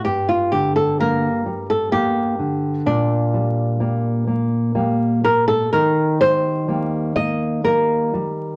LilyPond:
<<
  \new Staff \with { instrumentName = "Nylon-string guitar" } { \time 3/4 \key g \minor \tempo 4 = 63 g'16 f'16 g'16 a'16 bes'8. a'16 g'4 | d'2~ d'8 bes'16 a'16 | \key c \dorian bes'8 c''4 ees''8 bes'4 | }
  \new Staff \with { instrumentName = "Nylon-string guitar" } { \clef bass \time 3/4 \key g \minor g,8 d8 <g bes>8 g8 <g bes>8 d8 | bes,8 g8 <g bes>8 bes8 <g bes>8 g8 | \key c \dorian ees8 g8 <g bes>8 bes8 <g bes>8 g8 | }
>>